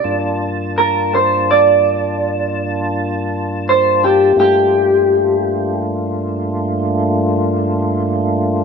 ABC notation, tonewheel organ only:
X:1
M:12/8
L:1/8
Q:3/8=55
K:Gm
V:1 name="Tonewheel organ"
[G,,B,DFa]12 | [G,,A,B,DF]12 |]